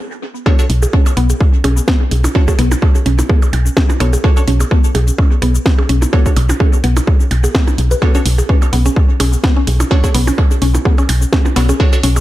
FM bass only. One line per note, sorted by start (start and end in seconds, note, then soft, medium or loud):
0.70 0.86 B1 loud
1.17 1.33 B1 loud
1.64 1.80 B1 medium
2.11 2.28 B1 medium
2.59 2.75 B1 loud
3.06 3.22 B1 loud
3.53 3.69 B1 medium
4.00 4.17 B1 medium
4.48 4.64 B1 loud
4.95 5.11 B1 loud
5.42 5.58 B1 medium
5.89 6.05 B1 medium
6.37 6.53 B1 loud
6.84 7.00 B1 loud
7.31 7.47 B1 medium
7.78 7.94 B1 medium
8.26 8.42 B1 loud
8.73 8.89 B1 loud
9.20 9.36 B1 medium
9.67 9.83 B1 medium
10.15 10.31 B1 loud
10.62 10.78 B1 loud
11.09 11.25 B1 medium
11.56 11.72 B1 medium
12.04 12.20 B1 loud